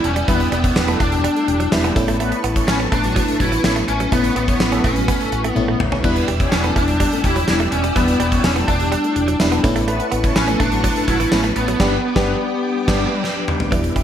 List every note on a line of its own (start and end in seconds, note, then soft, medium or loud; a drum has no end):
0.00 0.28 G3 medium
0.00 0.28 B3 medium
0.00 0.28 D4 medium
0.00 0.29 E4 medium
0.00 1.92 D5 medium
0.00 1.92 G5 medium
0.00 1.92 E6 medium
0.04 0.21 E1 loud
0.04 0.28 C#4 loud
0.04 muted clean electric guitar stroke soft
0.04 closed hi-hat medium
0.16 0.23 G3 medium
0.16 closed hi-hat medium
0.28 0.45 E1 loud
0.28 0.35 E3 medium
0.28 1.18 G3 medium
0.28 0.47 B3 loud
0.28 1.18 B3 medium
0.28 0.51 B3 loud
0.28 1.18 D4 medium
0.28 1.19 E4 medium
0.28 0.47 B4 loud
0.28 kick loud
0.28 closed hi-hat medium
0.40 muted clean electric guitar stroke soft
0.40 closed hi-hat medium
0.52 0.69 E1 loud
0.52 0.59 G3 medium
0.52 1.00 B3 medium
0.52 closed hi-hat medium
0.64 0.74 C#4 medium
0.64 0.74 C#5 medium
0.64 kick medium
0.64 closed hi-hat medium
0.76 0.93 E1 loud
0.76 0.86 B3 medium
0.76 0.86 B4 loud
0.76 muted clean electric guitar stroke soft
0.76 snare loud
0.76 tambourine medium
0.88 0.97 A3 medium
0.88 0.95 B3 medium
0.88 0.97 A4 loud
0.88 closed hi-hat soft
1.00 1.26 E1 loud
1.00 1.07 A3 medium
1.00 1.92 D4 medium
1.00 kick loud
1.00 closed hi-hat medium
1.12 1.21 G3 medium
1.12 1.21 G4 medium
1.12 closed hi-hat medium
1.24 1.31 G3 medium
1.24 closed hi-hat medium
1.36 1.46 A3 medium
1.36 1.46 A4 loud
1.36 closed hi-hat soft
1.48 1.65 E1 loud
1.48 1.58 G3 medium
1.48 1.58 G4 medium
1.48 muted clean electric guitar stroke soft
1.48 closed hi-hat medium
1.60 1.67 F#3 medium
1.60 closed hi-hat medium
1.71 1.89 E1 loud
1.71 1.96 G3 medium
1.71 1.95 B3 medium
1.71 1.96 D4 medium
1.71 1.95 E4 loud
1.71 snare loud
1.71 tambourine medium
1.84 1.91 B3 medium
1.84 closed hi-hat soft
1.95 2.31 A1 loud
1.95 2.86 A3 loud
1.95 2.86 B3 medium
1.95 2.86 C#4 medium
1.95 2.86 E4 loud
1.95 6.00 B4 medium
1.95 3.86 A5 medium
1.95 6.00 C#6 medium
1.95 muted clean electric guitar stroke soft
1.95 kick loud
1.95 closed hi-hat medium
2.08 2.15 A3 medium
2.08 closed hi-hat medium
2.20 2.27 A3 medium
2.20 2.39 B3 loud
2.20 2.39 B4 loud
2.20 closed hi-hat medium
2.32 muted clean electric guitar stroke soft
2.32 closed hi-hat medium
2.44 2.61 A1 loud
2.44 2.51 B3 medium
2.44 closed hi-hat medium
2.56 2.66 C#4 medium
2.56 2.66 C#5 medium
2.56 kick medium
2.56 closed hi-hat medium
2.68 2.85 A1 loud
2.68 2.78 B3 medium
2.68 2.75 C#4 medium
2.68 2.78 B4 loud
2.68 muted clean electric guitar stroke soft
2.68 snare loud
2.68 tambourine medium
2.80 2.90 A3 medium
2.80 2.87 C#4 medium
2.80 2.90 A4 medium
2.80 closed hi-hat soft
2.92 3.18 A1 loud
2.92 2.99 A3 medium
2.92 3.42 D4 loud
2.92 kick loud
2.92 closed hi-hat medium
3.04 3.14 F#3 medium
3.04 3.14 F#4 medium
3.04 closed hi-hat medium
3.16 3.23 F#3 medium
3.16 kick medium
3.16 closed hi-hat medium
3.28 3.38 A3 medium
3.28 3.38 A4 medium
3.28 closed hi-hat soft
3.40 3.57 A1 medium
3.40 3.50 F#3 medium
3.40 3.64 E4 loud
3.40 3.50 F#4 medium
3.40 muted clean electric guitar stroke soft
3.40 kick medium
3.40 closed hi-hat medium
3.52 3.59 E3 medium
3.52 closed hi-hat medium
3.64 3.81 A1 loud
3.64 4.09 A3 medium
3.64 4.09 B3 medium
3.64 4.09 C#4 medium
3.64 4.09 E4 medium
3.64 3.71 E4 loud
3.64 snare loud
3.64 tambourine medium
3.76 3.83 A3 medium
3.76 closed hi-hat soft
3.88 4.05 A1 medium
3.88 4.12 C#4 loud
3.88 6.02 B5 medium
3.88 muted clean electric guitar stroke soft
3.88 closed hi-hat medium
4.00 4.07 F#3 medium
4.00 closed hi-hat medium
4.11 4.29 A1 loud
4.11 5.02 A3 medium
4.11 4.19 A3 medium
4.11 5.02 B3 medium
4.11 4.31 B3 loud
4.11 4.35 B3 loud
4.11 5.02 C#4 medium
4.11 5.02 E4 medium
4.11 4.31 B4 loud
4.11 kick loud
4.11 closed hi-hat medium
4.24 muted clean electric guitar stroke soft
4.24 closed hi-hat medium
4.36 4.53 A1 medium
4.36 4.43 B3 medium
4.36 4.84 B3 loud
4.36 closed hi-hat medium
4.48 4.58 C#4 medium
4.48 4.58 C#5 medium
4.48 kick medium
4.48 closed hi-hat medium
4.60 4.77 A1 medium
4.60 4.70 B3 medium
4.60 4.70 B4 loud
4.60 muted clean electric guitar stroke soft
4.60 snare loud
4.60 tambourine medium
4.72 4.82 A3 medium
4.72 4.79 C#4 medium
4.72 4.82 A4 medium
4.72 closed hi-hat soft
4.84 5.10 A1 medium
4.84 4.91 A3 medium
4.84 5.50 C#4 medium
4.84 kick medium
4.84 closed hi-hat medium
4.96 5.06 F#3 medium
4.96 5.06 F#4 medium
4.96 closed hi-hat medium
5.08 5.15 B3 medium
5.08 kick medium
5.08 closed hi-hat medium
5.20 5.30 A3 medium
5.20 5.30 A4 medium
5.20 closed hi-hat soft
5.32 5.49 A1 loud
5.32 5.42 F#3 medium
5.32 5.42 F#4 loud
5.32 muted clean electric guitar stroke soft
5.32 closed hi-hat medium
5.44 5.51 A3 medium
5.44 closed hi-hat medium
5.50 5.76 B3 medium
5.55 5.73 A1 loud
5.55 6.01 A3 medium
5.55 6.01 B3 medium
5.55 6.01 C#4 medium
5.55 6.01 E4 loud
5.55 high tom medium
5.68 5.75 A3 medium
5.80 5.97 A1 loud
5.80 muted clean electric guitar stroke soft
5.80 mid tom medium
5.92 5.99 C#4 medium
5.92 floor tom medium
6.03 6.21 E1 loud
6.03 6.11 E3 medium
6.03 6.94 G3 medium
6.03 6.94 B3 medium
6.03 6.23 B3 loud
6.03 6.94 D4 medium
6.03 6.94 E4 loud
6.03 6.23 B4 loud
6.03 9.61 D5 medium
6.03 9.60 G5 medium
6.03 9.61 E6 medium
6.03 kick loud
6.03 crash medium
6.16 muted clean electric guitar stroke soft
6.16 closed hi-hat medium
6.28 6.45 E1 loud
6.28 6.35 G3 medium
6.28 closed hi-hat medium
6.40 6.50 C#4 medium
6.40 6.50 C#5 medium
6.40 kick medium
6.40 closed hi-hat medium
6.52 6.69 E1 loud
6.52 6.62 B3 medium
6.52 6.76 C#4 medium
6.52 6.62 B4 loud
6.52 muted clean electric guitar stroke soft
6.52 snare loud
6.52 tambourine medium
6.64 6.74 A3 medium
6.64 6.71 B3 medium
6.64 6.74 A4 loud
6.64 closed hi-hat soft
6.76 7.02 E1 medium
6.76 6.83 A3 medium
6.76 7.13 D4 loud
6.76 kick medium
6.76 closed hi-hat medium
6.88 6.98 G3 medium
6.88 6.98 G4 medium
6.88 closed hi-hat medium
7.00 7.07 G3 medium
7.00 kick medium
7.00 closed hi-hat medium
7.12 7.22 A3 medium
7.12 7.26 C#4 loud
7.12 7.22 A4 medium
7.12 closed hi-hat soft
7.24 7.41 E1 loud
7.24 7.34 G3 medium
7.24 7.47 E4 loud
7.24 7.34 G4 loud
7.24 muted clean electric guitar stroke soft
7.24 kick medium
7.24 closed hi-hat medium
7.36 7.43 F#3 medium
7.36 closed hi-hat medium
7.47 7.65 E1 medium
7.47 7.93 G3 medium
7.47 7.93 B3 medium
7.47 7.93 D4 medium
7.47 7.55 E4 loud
7.47 7.93 E4 medium
7.47 snare loud
7.47 tambourine medium
7.60 7.67 A3 medium
7.60 closed hi-hat soft
7.72 7.89 E1 loud
7.72 7.96 C#4 loud
7.72 muted clean electric guitar stroke soft
7.72 closed hi-hat medium
7.84 7.91 G3 medium
7.84 closed hi-hat medium
7.95 8.13 E1 loud
7.95 8.03 E3 medium
7.95 8.86 G3 medium
7.95 8.86 B3 medium
7.95 8.18 B3 loud
7.95 8.15 B3 loud
7.95 8.86 D4 medium
7.95 8.86 E4 medium
7.95 8.15 B4 loud
7.95 kick loud
7.95 closed hi-hat medium
8.08 muted clean electric guitar stroke soft
8.08 closed hi-hat medium
8.20 8.37 E1 loud
8.20 8.27 G3 medium
8.20 8.43 B3 medium
8.20 closed hi-hat medium
8.32 8.42 C#4 medium
8.32 8.42 C#5 medium
8.32 kick medium
8.32 closed hi-hat medium
8.44 8.61 E1 loud
8.44 8.54 B3 medium
8.44 8.50 C#4 loud
8.44 8.54 B4 loud
8.44 muted clean electric guitar stroke soft
8.44 snare loud
8.44 tambourine medium
8.56 8.66 A3 medium
8.56 8.63 B3 medium
8.56 8.66 A4 medium
8.56 closed hi-hat soft
8.68 8.94 E1 loud
8.68 8.75 A3 medium
8.68 9.60 D4 medium
8.68 kick medium
8.68 closed hi-hat medium
8.80 8.90 G3 medium
8.80 8.90 G4 medium
8.80 closed hi-hat medium
8.92 8.99 G3 medium
8.92 closed hi-hat medium
9.04 9.14 A3 medium
9.04 9.14 A4 medium
9.04 closed hi-hat soft
9.16 9.33 E1 loud
9.16 9.26 G3 medium
9.16 9.26 G4 medium
9.16 muted clean electric guitar stroke soft
9.16 closed hi-hat medium
9.28 9.35 F#3 medium
9.28 closed hi-hat medium
9.39 9.57 E1 loud
9.39 9.64 G3 medium
9.39 9.63 B3 medium
9.39 9.64 D4 medium
9.39 9.63 E4 loud
9.39 snare loud
9.39 tambourine medium
9.52 9.59 B3 medium
9.52 closed hi-hat soft
9.63 9.99 A1 loud
9.63 10.54 A3 loud
9.63 10.54 B3 medium
9.63 10.54 C#4 medium
9.63 10.54 E4 loud
9.63 13.68 B4 medium
9.63 11.78 A5 medium
9.63 11.78 C#6 medium
9.63 muted clean electric guitar stroke soft
9.63 kick loud
9.63 closed hi-hat medium
9.76 9.83 A3 medium
9.76 closed hi-hat medium
9.88 9.95 A3 medium
9.88 10.07 B3 loud
9.88 10.07 B4 loud
9.88 closed hi-hat medium
10.00 muted clean electric guitar stroke soft
10.00 closed hi-hat medium
10.12 10.29 A1 loud
10.12 10.19 B3 medium
10.12 closed hi-hat medium
10.24 10.34 C#4 medium
10.24 10.34 C#5 medium
10.24 kick medium
10.24 closed hi-hat medium
10.36 10.53 A1 medium
10.36 10.46 B3 medium
10.36 10.59 C#4 medium
10.36 10.46 B4 loud
10.36 muted clean electric guitar stroke soft
10.36 snare loud
10.36 tambourine medium
10.48 10.58 A3 medium
10.48 10.55 C#4 medium
10.48 10.58 A4 medium
10.48 closed hi-hat medium
10.60 10.86 A1 loud
10.60 10.67 A3 medium
10.60 11.10 D4 loud
10.60 kick medium
10.60 closed hi-hat medium
10.72 10.82 F#3 medium
10.72 10.82 F#4 medium
10.72 closed hi-hat medium
10.84 10.91 F#3 medium
10.84 kick medium
10.84 closed hi-hat medium
10.96 11.06 A3 medium
10.96 11.06 A4 medium
10.96 closed hi-hat soft
11.08 11.25 A1 loud
11.08 11.18 F#3 medium
11.08 11.33 E4 loud
11.08 11.18 F#4 loud
11.08 muted clean electric guitar stroke soft
11.08 kick medium
11.08 closed hi-hat medium
11.20 11.27 E3 medium
11.20 closed hi-hat medium
11.31 11.49 A1 medium
11.31 11.77 A3 medium
11.31 11.77 B3 medium
11.31 11.77 C#4 medium
11.31 11.39 C#4 medium
11.31 11.77 E4 medium
11.31 snare loud
11.31 tambourine medium
11.44 11.51 A3 medium
11.44 closed hi-hat soft
11.56 11.73 A1 loud
11.56 13.20 B3 medium
11.56 muted clean electric guitar stroke soft
11.56 closed hi-hat medium
11.68 11.75 F#3 medium
11.68 closed hi-hat medium
11.79 11.96 G1 loud
11.79 11.96 G3 loud
11.79 11.96 B3 medium
11.79 11.96 B3 loud
11.79 11.96 D4 loud
11.79 11.97 G4 loud
11.79 11.96 B4 loud
11.79 13.70 G5 medium
11.79 13.70 D6 medium
11.79 kick loud
11.79 snare loud
11.79 crash medium
12.15 12.32 G1 loud
12.15 12.32 G3 loud
12.15 12.32 B3 loud
12.15 12.32 D4 loud
12.15 12.33 G4 loud
12.15 12.32 B4 loud
12.15 kick loud
12.15 snare loud
12.87 13.04 G1 loud
12.87 13.04 G3 loud
12.87 13.04 B3 loud
12.87 13.04 D4 loud
12.87 13.04 G4 loud
12.87 13.05 G4 medium
12.87 kick loud
12.87 snare loud
12.87 crash medium
13.24 snare medium
13.48 mid tom medium
13.60 floor tom medium
13.71 13.89 E1 loud
13.71 13.79 E3 medium
13.71 14.03 G3 medium
13.71 14.03 B3 medium
13.71 14.03 D4 medium
13.71 14.03 E4 medium
13.71 14.03 G4 medium
13.71 14.03 E5 medium
13.71 14.03 D6 medium
13.71 kick loud
13.71 closed hi-hat medium
13.84 muted clean electric guitar stroke soft
13.84 closed hi-hat medium
13.96 14.03 E1 medium
13.96 14.03 G3 medium
13.96 kick medium
13.96 closed hi-hat medium